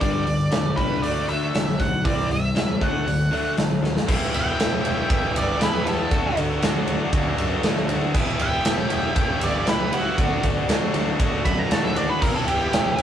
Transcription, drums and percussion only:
0.01 kick, open hi-hat
0.27 open hi-hat
0.52 snare, open hi-hat
0.78 kick, open hi-hat
1.03 open hi-hat
1.29 open hi-hat
1.55 snare, open hi-hat
1.69 snare
1.80 kick, open hi-hat
2.05 kick, open hi-hat
2.31 open hi-hat
2.56 snare, open hi-hat
2.81 kick, open hi-hat
3.08 open hi-hat
3.33 open hi-hat
3.57 snare, open hi-hat
3.84 snare
3.97 snare
4.08 kick, crash
4.34 ride
4.60 snare, ride
4.85 ride
5.10 kick, ride
5.36 ride
5.61 snare, ride
5.74 snare
5.87 ride
6.11 kick, ride
6.37 ride
6.62 snare, ride
6.88 ride
7.13 kick, ride
7.38 ride
7.63 snare, ride
7.77 snare
7.89 ride
8.14 kick, crash
8.39 ride
8.65 snare, ride
8.90 ride
9.16 kick, ride
9.41 ride
9.67 snare, ride
9.93 ride
10.18 kick, ride
10.43 kick, ride
10.69 snare, ride
10.94 snare, ride
11.20 kick, ride
11.45 kick, ride
11.71 snare, ride
11.85 snare
11.96 ride
12.22 kick, crash
12.48 ride
12.73 snare, ride
12.98 ride

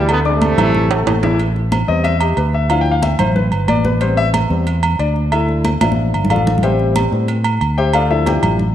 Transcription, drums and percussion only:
0.09 high conga, low agogo
0.25 high conga
0.42 high conga, low agogo
0.58 high conga, low conga, low agogo
0.75 high conga, low conga
0.91 high conga, high timbale, low agogo
1.07 high conga, high timbale, low agogo
1.23 high conga, low timbale
1.39 high conga, low agogo
1.56 high conga
1.72 high conga, low agogo
1.88 high conga
2.05 high conga, low agogo
2.21 high conga, low agogo
2.37 high conga, low agogo
2.53 high conga
2.70 high conga, low agogo
2.86 high conga
3.02 high conga, low agogo
3.19 high conga, low conga, low agogo
3.36 high conga, low conga
3.52 high conga, low agogo
3.68 high conga, low agogo
3.85 high conga
4.01 high conga, low agogo
4.18 high conga
4.34 high conga, low agogo
4.50 high conga
4.67 high conga, low agogo
4.83 high conga, low agogo
4.99 high conga, low agogo
5.16 high conga
5.32 high conga, low agogo
5.49 high conga
5.65 high conga, low agogo
5.81 high conga, low agogo
5.92 high conga
6.14 low agogo
6.25 low conga
6.30 low agogo
6.36 low conga
6.47 low conga
6.58 low conga
6.63 high conga, low agogo
6.79 high conga
6.96 high conga, low agogo
7.12 high conga
7.28 high conga, low agogo
7.44 high conga, low agogo
7.61 high conga, low agogo
7.78 high conga
7.93 high conga, low agogo
8.11 high conga
8.26 high conga, low agogo
8.43 high conga, low conga, low agogo
8.59 high conga, low conga

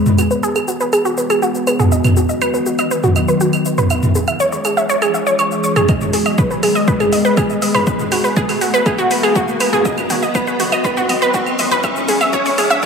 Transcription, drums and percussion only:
0.06 mid tom, shaker
0.18 claves, shaker
0.31 shaker
0.43 shaker
0.56 claves, shaker
0.68 shaker
0.80 shaker
0.93 claves, shaker
1.05 shaker
1.18 shaker
1.30 claves, shaker
1.42 shaker
1.55 shaker
1.67 claves, shaker
1.80 mid tom, shaker
1.92 shaker
2.04 mid tom, claves, shaker
2.17 shaker
2.29 shaker
2.42 claves, shaker
2.54 shaker
2.66 shaker
2.79 claves, shaker
2.91 shaker
3.03 mid tom, shaker
3.16 claves, shaker
3.28 shaker
3.41 shaker
3.53 claves, shaker
3.65 shaker
3.78 mid tom, shaker
3.90 claves, shaker
4.03 mid tom, shaker
4.15 shaker
4.28 claves, shaker
4.40 shaker
4.52 shaker
4.65 claves, shaker
4.77 shaker
4.89 shaker
5.02 claves, shaker
5.14 shaker
5.27 shaker
5.39 claves, shaker
5.51 shaker
5.64 shaker
5.76 mid tom, claves, shaker
5.89 kick, mid tom, claves, shaker
6.01 mid tom, shaker
6.13 open hi-hat, shaker
6.26 claves, shaker
6.38 kick, mid tom, shaker
6.51 shaker
6.63 open hi-hat, claves, shaker
6.75 shaker
6.88 kick, mid tom, shaker
7.00 mid tom, claves, shaker
7.12 open hi-hat, shaker
7.25 shaker
7.37 kick, mid tom, claves, shaker
7.50 shaker
7.62 open hi-hat, shaker
7.75 mid tom, claves, shaker
7.87 kick, mid tom, shaker
7.99 mid tom, shaker
8.12 open hi-hat, claves, shaker
8.24 shaker
8.36 kick, mid tom, shaker
8.49 open hi-hat, claves, shaker
8.61 open hi-hat, shaker
8.74 shaker
8.86 kick, mid tom, claves, shaker
8.98 shaker
9.11 open hi-hat, shaker
9.23 claves, shaker
9.36 kick, mid tom, shaker
9.48 shaker
9.60 open hi-hat, claves, shaker
9.73 mid tom, shaker
9.85 kick, mid tom, shaker
9.98 mid tom, claves, shaker
10.10 open hi-hat, mid tom, shaker
10.23 shaker
10.35 kick, mid tom, claves, shaker
10.47 shaker
10.60 open hi-hat, mid tom, shaker
10.72 claves, shaker
10.84 kick, mid tom, shaker
10.97 mid tom, shaker
11.09 open hi-hat, mid tom, claves, shaker
11.22 shaker
11.34 kick, mid tom, shaker
11.47 claves, shaker
11.59 open hi-hat, mid tom, shaker
11.71 mid tom, shaker
11.84 kick, mid tom, claves, shaker
11.96 mid tom, shaker
12.08 open hi-hat, mid tom, shaker
12.21 mid tom, claves, shaker
12.33 kick, mid tom, shaker
12.46 open hi-hat, mid tom, shaker
12.58 open hi-hat, mid tom, claves, shaker
12.70 mid tom, shaker
12.83 mid tom, shaker

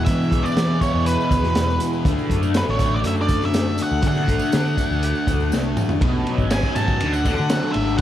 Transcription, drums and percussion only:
0.06 kick, closed hi-hat, tambourine
0.22 tambourine
0.32 kick, closed hi-hat
0.46 tambourine
0.57 snare, closed hi-hat, tambourine
0.81 kick, closed hi-hat, tambourine
1.06 closed hi-hat, tambourine
1.21 tambourine
1.31 kick, closed hi-hat, tambourine
1.43 snare, tambourine
1.55 snare, closed hi-hat, tambourine
1.70 tambourine
1.80 closed hi-hat, tambourine
1.93 tambourine
2.05 kick, closed hi-hat, tambourine
2.19 tambourine
2.30 kick, closed hi-hat
2.43 tambourine
2.54 snare, closed hi-hat, tambourine
2.68 snare
2.79 kick, closed hi-hat, tambourine
3.04 closed hi-hat, tambourine
3.16 tambourine
3.28 kick, closed hi-hat, tambourine
3.42 snare, tambourine
3.54 snare, closed hi-hat, tambourine
3.66 tambourine
3.78 closed hi-hat, tambourine
3.91 tambourine
4.02 kick, closed hi-hat, tambourine
4.15 snare, tambourine
4.28 kick, closed hi-hat, tambourine
4.39 tambourine
4.52 snare, closed hi-hat, tambourine
4.65 tambourine
4.77 kick, closed hi-hat, tambourine
4.92 tambourine
5.03 closed hi-hat, tambourine
5.15 tambourine
5.27 kick, closed hi-hat, tambourine
5.40 tambourine
5.52 snare, tambourine
5.77 mid tom, tambourine
5.89 floor tom, tambourine
6.01 kick, ride
6.27 ride
6.38 kick, tambourine
6.50 snare, ride, tambourine
6.63 kick, snare, tambourine
6.76 snare, ride, tambourine
6.88 kick, tambourine
7.00 ride, tambourine
7.13 tambourine
7.25 kick, snare, ride, tambourine
7.38 tambourine
7.49 snare, ride, tambourine
7.74 ride

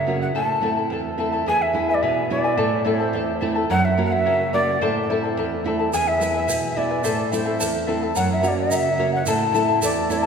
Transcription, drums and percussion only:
5.93 shaker
6.21 shaker
6.49 shaker
7.04 shaker
7.33 shaker
7.61 shaker
8.16 shaker
8.44 shaker
8.71 shaker
9.26 shaker
9.55 shaker
9.82 shaker
10.10 shaker

